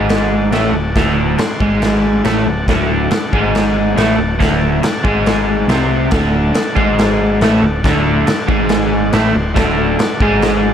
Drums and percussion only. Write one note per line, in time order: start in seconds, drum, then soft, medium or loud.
0.09 snare loud
0.09 crash medium
0.52 snare loud
0.52 crash medium
0.96 kick loud
0.96 snare loud
0.96 crash medium
1.38 snare loud
1.38 crash medium
1.60 kick loud
1.82 snare loud
1.82 crash medium
2.25 snare loud
2.25 crash medium
2.68 kick loud
2.68 snare loud
2.68 crash medium
3.11 snare loud
3.11 crash medium
3.33 kick medium
3.55 snare loud
3.55 crash medium
3.98 snare loud
3.98 crash medium
4.41 kick loud
4.41 snare loud
4.41 crash medium
4.83 snare loud
4.83 crash medium
5.05 kick loud
5.26 snare loud
5.26 crash medium
5.69 snare loud
5.69 crash medium
6.11 kick loud
6.11 snare loud
6.11 crash medium
6.54 snare loud
6.54 crash medium
6.77 kick loud
6.99 snare loud
6.99 crash medium
7.41 snare loud
7.41 crash soft
7.84 kick loud
7.84 snare loud
7.84 crash medium
8.27 snare loud
8.27 crash medium
8.49 kick loud
8.69 snare loud
8.69 crash medium
9.13 snare loud
9.13 crash medium
9.56 kick loud
9.56 snare loud
9.56 crash medium
9.99 snare loud
9.99 crash medium
10.20 kick loud
10.42 snare loud
10.42 crash medium